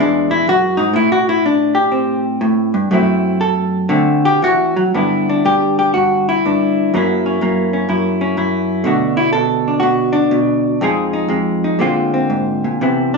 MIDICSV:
0, 0, Header, 1, 2, 480
1, 0, Start_track
1, 0, Tempo, 484262
1, 934, Time_signature, 4, 2, 24, 8
1, 2377, Tempo, 506757
1, 6217, Tempo, 483481
1, 10537, Tempo, 502934
1, 12799, End_track
2, 0, Start_track
2, 0, Title_t, "Hollow-body jazz guitar"
2, 0, Program_c, 0, 26
2, 0, Note_on_c, 0, 40, 75
2, 0, Note_on_c, 0, 52, 50
2, 0, Note_on_c, 0, 56, 50
2, 5, Note_on_c, 0, 62, 81
2, 306, Note_on_c, 0, 64, 97
2, 308, Note_off_c, 0, 62, 0
2, 459, Note_off_c, 0, 40, 0
2, 460, Note_off_c, 0, 64, 0
2, 471, Note_on_c, 0, 42, 64
2, 486, Note_on_c, 0, 66, 107
2, 766, Note_on_c, 0, 63, 89
2, 780, Note_off_c, 0, 42, 0
2, 784, Note_on_c, 0, 44, 66
2, 789, Note_off_c, 0, 66, 0
2, 925, Note_off_c, 0, 56, 0
2, 926, Note_on_c, 0, 45, 80
2, 930, Note_off_c, 0, 63, 0
2, 939, Note_off_c, 0, 44, 0
2, 949, Note_on_c, 0, 64, 90
2, 1101, Note_off_c, 0, 64, 0
2, 1109, Note_on_c, 0, 66, 95
2, 1139, Note_off_c, 0, 52, 0
2, 1261, Note_off_c, 0, 66, 0
2, 1278, Note_on_c, 0, 64, 85
2, 1424, Note_off_c, 0, 64, 0
2, 1444, Note_on_c, 0, 62, 76
2, 1732, Note_on_c, 0, 67, 84
2, 1745, Note_off_c, 0, 62, 0
2, 1900, Note_on_c, 0, 60, 54
2, 2214, Note_off_c, 0, 67, 0
2, 2374, Note_off_c, 0, 45, 0
2, 2388, Note_on_c, 0, 45, 65
2, 2698, Note_off_c, 0, 45, 0
2, 2700, Note_on_c, 0, 43, 70
2, 2838, Note_off_c, 0, 60, 0
2, 2855, Note_off_c, 0, 43, 0
2, 2860, Note_on_c, 0, 42, 75
2, 2865, Note_on_c, 0, 54, 51
2, 2875, Note_on_c, 0, 57, 55
2, 2882, Note_on_c, 0, 60, 53
2, 2890, Note_on_c, 0, 64, 45
2, 3329, Note_off_c, 0, 64, 0
2, 3333, Note_on_c, 0, 69, 85
2, 3785, Note_off_c, 0, 57, 0
2, 3786, Note_off_c, 0, 54, 0
2, 3788, Note_off_c, 0, 42, 0
2, 3790, Note_on_c, 0, 50, 85
2, 3793, Note_off_c, 0, 60, 0
2, 3796, Note_on_c, 0, 57, 53
2, 3804, Note_on_c, 0, 60, 54
2, 4130, Note_off_c, 0, 69, 0
2, 4134, Note_on_c, 0, 67, 95
2, 4290, Note_off_c, 0, 50, 0
2, 4296, Note_on_c, 0, 52, 66
2, 4299, Note_off_c, 0, 67, 0
2, 4309, Note_on_c, 0, 66, 96
2, 4614, Note_off_c, 0, 52, 0
2, 4618, Note_on_c, 0, 54, 67
2, 4637, Note_off_c, 0, 66, 0
2, 4772, Note_off_c, 0, 57, 0
2, 4776, Note_off_c, 0, 60, 0
2, 4787, Note_off_c, 0, 54, 0
2, 4789, Note_on_c, 0, 43, 65
2, 4791, Note_on_c, 0, 50, 38
2, 4794, Note_on_c, 0, 59, 42
2, 4800, Note_on_c, 0, 62, 44
2, 4816, Note_on_c, 0, 64, 44
2, 5110, Note_off_c, 0, 62, 0
2, 5121, Note_on_c, 0, 62, 70
2, 5256, Note_off_c, 0, 43, 0
2, 5267, Note_on_c, 0, 43, 59
2, 5270, Note_off_c, 0, 64, 0
2, 5273, Note_on_c, 0, 67, 88
2, 5576, Note_off_c, 0, 67, 0
2, 5588, Note_on_c, 0, 67, 79
2, 5726, Note_off_c, 0, 67, 0
2, 5730, Note_on_c, 0, 66, 79
2, 5732, Note_off_c, 0, 43, 0
2, 5744, Note_on_c, 0, 43, 64
2, 5751, Note_off_c, 0, 62, 0
2, 6051, Note_off_c, 0, 66, 0
2, 6061, Note_on_c, 0, 64, 80
2, 6209, Note_off_c, 0, 43, 0
2, 6221, Note_on_c, 0, 43, 66
2, 6228, Note_on_c, 0, 62, 42
2, 6684, Note_off_c, 0, 59, 0
2, 6686, Note_off_c, 0, 43, 0
2, 6689, Note_off_c, 0, 62, 0
2, 6698, Note_on_c, 0, 42, 69
2, 6699, Note_off_c, 0, 50, 0
2, 6703, Note_off_c, 0, 64, 0
2, 6705, Note_on_c, 0, 54, 55
2, 6709, Note_on_c, 0, 58, 58
2, 6716, Note_on_c, 0, 61, 48
2, 6727, Note_on_c, 0, 64, 64
2, 7006, Note_off_c, 0, 61, 0
2, 7018, Note_on_c, 0, 61, 48
2, 7161, Note_off_c, 0, 42, 0
2, 7164, Note_off_c, 0, 58, 0
2, 7171, Note_on_c, 0, 42, 61
2, 7180, Note_on_c, 0, 58, 49
2, 7477, Note_off_c, 0, 61, 0
2, 7489, Note_on_c, 0, 61, 51
2, 7630, Note_off_c, 0, 42, 0
2, 7633, Note_off_c, 0, 64, 0
2, 7641, Note_on_c, 0, 42, 75
2, 7649, Note_on_c, 0, 64, 51
2, 7951, Note_off_c, 0, 61, 0
2, 7963, Note_on_c, 0, 61, 56
2, 8111, Note_off_c, 0, 42, 0
2, 8118, Note_off_c, 0, 64, 0
2, 8123, Note_on_c, 0, 42, 68
2, 8130, Note_on_c, 0, 64, 53
2, 8580, Note_off_c, 0, 58, 0
2, 8581, Note_off_c, 0, 61, 0
2, 8582, Note_off_c, 0, 42, 0
2, 8583, Note_off_c, 0, 54, 0
2, 8587, Note_on_c, 0, 47, 69
2, 8594, Note_on_c, 0, 50, 47
2, 8601, Note_on_c, 0, 57, 46
2, 8605, Note_off_c, 0, 64, 0
2, 8610, Note_on_c, 0, 62, 46
2, 8617, Note_on_c, 0, 66, 46
2, 8911, Note_off_c, 0, 66, 0
2, 8915, Note_on_c, 0, 64, 84
2, 9067, Note_off_c, 0, 64, 0
2, 9071, Note_on_c, 0, 69, 100
2, 9075, Note_off_c, 0, 47, 0
2, 9086, Note_on_c, 0, 47, 66
2, 9407, Note_off_c, 0, 62, 0
2, 9419, Note_on_c, 0, 62, 45
2, 9534, Note_off_c, 0, 69, 0
2, 9538, Note_on_c, 0, 66, 84
2, 9558, Note_off_c, 0, 47, 0
2, 9570, Note_on_c, 0, 47, 74
2, 9853, Note_off_c, 0, 62, 0
2, 9865, Note_on_c, 0, 62, 82
2, 10038, Note_off_c, 0, 47, 0
2, 10049, Note_on_c, 0, 47, 68
2, 10363, Note_off_c, 0, 66, 0
2, 10517, Note_off_c, 0, 47, 0
2, 10518, Note_off_c, 0, 57, 0
2, 10526, Note_off_c, 0, 62, 0
2, 10534, Note_off_c, 0, 50, 0
2, 10544, Note_on_c, 0, 41, 68
2, 10553, Note_on_c, 0, 53, 59
2, 10557, Note_on_c, 0, 56, 50
2, 10566, Note_on_c, 0, 63, 58
2, 10573, Note_on_c, 0, 68, 53
2, 10841, Note_off_c, 0, 63, 0
2, 10852, Note_on_c, 0, 63, 54
2, 10985, Note_off_c, 0, 41, 0
2, 10996, Note_off_c, 0, 56, 0
2, 10996, Note_on_c, 0, 41, 64
2, 11007, Note_on_c, 0, 56, 53
2, 11327, Note_off_c, 0, 63, 0
2, 11338, Note_on_c, 0, 63, 51
2, 11465, Note_off_c, 0, 41, 0
2, 11470, Note_off_c, 0, 56, 0
2, 11475, Note_off_c, 0, 63, 0
2, 11477, Note_on_c, 0, 46, 69
2, 11480, Note_off_c, 0, 53, 0
2, 11484, Note_on_c, 0, 50, 48
2, 11487, Note_off_c, 0, 68, 0
2, 11491, Note_on_c, 0, 56, 51
2, 11498, Note_on_c, 0, 60, 55
2, 11503, Note_on_c, 0, 65, 61
2, 11806, Note_off_c, 0, 60, 0
2, 11810, Note_on_c, 0, 60, 50
2, 11963, Note_on_c, 0, 44, 55
2, 12282, Note_off_c, 0, 46, 0
2, 12291, Note_off_c, 0, 44, 0
2, 12293, Note_on_c, 0, 46, 52
2, 12437, Note_off_c, 0, 56, 0
2, 12443, Note_off_c, 0, 65, 0
2, 12450, Note_off_c, 0, 46, 0
2, 12451, Note_off_c, 0, 50, 0
2, 12454, Note_on_c, 0, 48, 60
2, 12459, Note_on_c, 0, 52, 44
2, 12467, Note_on_c, 0, 59, 43
2, 12469, Note_off_c, 0, 60, 0
2, 12473, Note_on_c, 0, 60, 36
2, 12765, Note_off_c, 0, 60, 0
2, 12768, Note_on_c, 0, 62, 74
2, 12799, Note_off_c, 0, 48, 0
2, 12799, Note_off_c, 0, 52, 0
2, 12799, Note_off_c, 0, 59, 0
2, 12799, Note_off_c, 0, 62, 0
2, 12799, End_track
0, 0, End_of_file